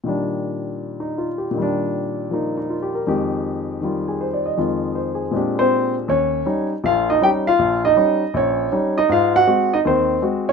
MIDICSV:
0, 0, Header, 1, 2, 480
1, 0, Start_track
1, 0, Tempo, 376648
1, 66, Time_signature, 4, 2, 24, 8
1, 13413, End_track
2, 0, Start_track
2, 0, Title_t, "Grand piano"
2, 0, Program_c, 0, 0
2, 46, Note_on_c, 0, 46, 40
2, 62, Note_on_c, 0, 51, 38
2, 80, Note_on_c, 0, 55, 37
2, 105, Note_on_c, 0, 62, 45
2, 1275, Note_on_c, 0, 63, 38
2, 1504, Note_on_c, 0, 65, 37
2, 1607, Note_off_c, 0, 63, 0
2, 1758, Note_on_c, 0, 67, 38
2, 1873, Note_off_c, 0, 65, 0
2, 1904, Note_off_c, 0, 46, 0
2, 1923, Note_on_c, 0, 46, 48
2, 1949, Note_off_c, 0, 51, 0
2, 1968, Note_on_c, 0, 51, 44
2, 1995, Note_off_c, 0, 55, 0
2, 2008, Note_off_c, 0, 62, 0
2, 2015, Note_on_c, 0, 55, 43
2, 2065, Note_on_c, 0, 62, 55
2, 2089, Note_off_c, 0, 67, 0
2, 2937, Note_on_c, 0, 53, 34
2, 2954, Note_on_c, 0, 58, 31
2, 2976, Note_on_c, 0, 63, 39
2, 3261, Note_off_c, 0, 63, 0
2, 3281, Note_on_c, 0, 63, 39
2, 3440, Note_on_c, 0, 65, 37
2, 3520, Note_off_c, 0, 63, 0
2, 3597, Note_on_c, 0, 67, 43
2, 3722, Note_off_c, 0, 65, 0
2, 3758, Note_on_c, 0, 70, 42
2, 3839, Note_off_c, 0, 67, 0
2, 3878, Note_off_c, 0, 46, 0
2, 3898, Note_off_c, 0, 51, 0
2, 3905, Note_off_c, 0, 53, 0
2, 3909, Note_on_c, 0, 41, 48
2, 3913, Note_off_c, 0, 58, 0
2, 3917, Note_on_c, 0, 51, 44
2, 3924, Note_off_c, 0, 55, 0
2, 3925, Note_on_c, 0, 56, 43
2, 3930, Note_on_c, 0, 67, 55
2, 3949, Note_off_c, 0, 62, 0
2, 3999, Note_off_c, 0, 70, 0
2, 4839, Note_off_c, 0, 51, 0
2, 4858, Note_on_c, 0, 51, 36
2, 4884, Note_on_c, 0, 55, 35
2, 4903, Note_on_c, 0, 65, 38
2, 5198, Note_on_c, 0, 68, 37
2, 5362, Note_on_c, 0, 72, 39
2, 5440, Note_off_c, 0, 68, 0
2, 5525, Note_on_c, 0, 74, 39
2, 5644, Note_off_c, 0, 72, 0
2, 5680, Note_on_c, 0, 75, 46
2, 5763, Note_off_c, 0, 74, 0
2, 5808, Note_off_c, 0, 41, 0
2, 5809, Note_off_c, 0, 51, 0
2, 5820, Note_off_c, 0, 56, 0
2, 5826, Note_off_c, 0, 65, 0
2, 5827, Note_on_c, 0, 41, 45
2, 5828, Note_on_c, 0, 51, 39
2, 5839, Note_off_c, 0, 55, 0
2, 5840, Note_on_c, 0, 56, 40
2, 5842, Note_off_c, 0, 67, 0
2, 5845, Note_on_c, 0, 65, 46
2, 5921, Note_off_c, 0, 75, 0
2, 6311, Note_on_c, 0, 72, 39
2, 6559, Note_on_c, 0, 68, 41
2, 6678, Note_off_c, 0, 72, 0
2, 6766, Note_off_c, 0, 56, 0
2, 6771, Note_on_c, 0, 46, 47
2, 6785, Note_on_c, 0, 56, 42
2, 6790, Note_off_c, 0, 41, 0
2, 6791, Note_off_c, 0, 51, 0
2, 6797, Note_on_c, 0, 60, 39
2, 6799, Note_off_c, 0, 65, 0
2, 6817, Note_on_c, 0, 62, 42
2, 6833, Note_on_c, 0, 67, 47
2, 6891, Note_off_c, 0, 68, 0
2, 7123, Note_off_c, 0, 60, 0
2, 7123, Note_on_c, 0, 72, 79
2, 7142, Note_on_c, 0, 60, 61
2, 7559, Note_off_c, 0, 72, 0
2, 7569, Note_off_c, 0, 60, 0
2, 7742, Note_off_c, 0, 46, 0
2, 7749, Note_off_c, 0, 56, 0
2, 7752, Note_on_c, 0, 39, 61
2, 7765, Note_off_c, 0, 62, 0
2, 7767, Note_on_c, 0, 73, 80
2, 7773, Note_off_c, 0, 67, 0
2, 7783, Note_on_c, 0, 61, 61
2, 8166, Note_off_c, 0, 39, 0
2, 8215, Note_off_c, 0, 61, 0
2, 8228, Note_on_c, 0, 55, 44
2, 8234, Note_on_c, 0, 61, 44
2, 8240, Note_on_c, 0, 63, 48
2, 8496, Note_off_c, 0, 73, 0
2, 8555, Note_off_c, 0, 55, 0
2, 8558, Note_off_c, 0, 61, 0
2, 8561, Note_off_c, 0, 63, 0
2, 8712, Note_on_c, 0, 34, 60
2, 8714, Note_on_c, 0, 46, 55
2, 8739, Note_on_c, 0, 77, 82
2, 8756, Note_on_c, 0, 65, 64
2, 9012, Note_off_c, 0, 77, 0
2, 9021, Note_off_c, 0, 65, 0
2, 9046, Note_on_c, 0, 75, 78
2, 9059, Note_on_c, 0, 63, 60
2, 9126, Note_off_c, 0, 34, 0
2, 9127, Note_off_c, 0, 46, 0
2, 9183, Note_off_c, 0, 63, 0
2, 9191, Note_on_c, 0, 55, 46
2, 9200, Note_on_c, 0, 61, 44
2, 9203, Note_on_c, 0, 63, 51
2, 9210, Note_off_c, 0, 75, 0
2, 9219, Note_on_c, 0, 79, 88
2, 9238, Note_on_c, 0, 67, 68
2, 9285, Note_off_c, 0, 79, 0
2, 9302, Note_off_c, 0, 67, 0
2, 9515, Note_off_c, 0, 55, 0
2, 9520, Note_off_c, 0, 61, 0
2, 9521, Note_off_c, 0, 63, 0
2, 9524, Note_on_c, 0, 77, 96
2, 9540, Note_on_c, 0, 65, 72
2, 9673, Note_on_c, 0, 34, 61
2, 9958, Note_off_c, 0, 77, 0
2, 9966, Note_off_c, 0, 65, 0
2, 10002, Note_on_c, 0, 75, 82
2, 10023, Note_on_c, 0, 63, 62
2, 10085, Note_off_c, 0, 34, 0
2, 10140, Note_off_c, 0, 63, 0
2, 10147, Note_on_c, 0, 55, 49
2, 10154, Note_on_c, 0, 61, 43
2, 10159, Note_on_c, 0, 63, 53
2, 10472, Note_off_c, 0, 55, 0
2, 10476, Note_off_c, 0, 61, 0
2, 10478, Note_off_c, 0, 63, 0
2, 10628, Note_on_c, 0, 34, 62
2, 10660, Note_off_c, 0, 75, 0
2, 10666, Note_on_c, 0, 73, 77
2, 10672, Note_on_c, 0, 61, 58
2, 11042, Note_off_c, 0, 34, 0
2, 11097, Note_off_c, 0, 61, 0
2, 11115, Note_on_c, 0, 55, 45
2, 11116, Note_on_c, 0, 61, 42
2, 11119, Note_on_c, 0, 63, 47
2, 11434, Note_off_c, 0, 63, 0
2, 11435, Note_off_c, 0, 55, 0
2, 11436, Note_off_c, 0, 61, 0
2, 11439, Note_on_c, 0, 75, 87
2, 11453, Note_on_c, 0, 63, 66
2, 11456, Note_off_c, 0, 73, 0
2, 11587, Note_on_c, 0, 44, 65
2, 11588, Note_off_c, 0, 75, 0
2, 11595, Note_off_c, 0, 63, 0
2, 11623, Note_on_c, 0, 77, 88
2, 11632, Note_on_c, 0, 65, 68
2, 11897, Note_off_c, 0, 65, 0
2, 11920, Note_off_c, 0, 77, 0
2, 11927, Note_on_c, 0, 78, 98
2, 11937, Note_on_c, 0, 66, 66
2, 12001, Note_off_c, 0, 44, 0
2, 12059, Note_off_c, 0, 66, 0
2, 12070, Note_on_c, 0, 56, 48
2, 12071, Note_on_c, 0, 60, 42
2, 12078, Note_on_c, 0, 66, 55
2, 12392, Note_off_c, 0, 56, 0
2, 12393, Note_off_c, 0, 60, 0
2, 12396, Note_off_c, 0, 66, 0
2, 12403, Note_off_c, 0, 78, 0
2, 12406, Note_on_c, 0, 75, 79
2, 12416, Note_on_c, 0, 63, 63
2, 12470, Note_off_c, 0, 75, 0
2, 12480, Note_off_c, 0, 63, 0
2, 12552, Note_on_c, 0, 39, 58
2, 12553, Note_on_c, 0, 51, 63
2, 12579, Note_on_c, 0, 72, 70
2, 12585, Note_on_c, 0, 60, 61
2, 12962, Note_off_c, 0, 39, 0
2, 12962, Note_off_c, 0, 51, 0
2, 13009, Note_off_c, 0, 72, 0
2, 13011, Note_off_c, 0, 60, 0
2, 13026, Note_on_c, 0, 56, 46
2, 13031, Note_on_c, 0, 60, 42
2, 13034, Note_on_c, 0, 66, 50
2, 13349, Note_off_c, 0, 56, 0
2, 13351, Note_off_c, 0, 60, 0
2, 13352, Note_off_c, 0, 66, 0
2, 13367, Note_on_c, 0, 73, 86
2, 13369, Note_on_c, 0, 61, 66
2, 13413, Note_off_c, 0, 61, 0
2, 13413, Note_off_c, 0, 73, 0
2, 13413, End_track
0, 0, End_of_file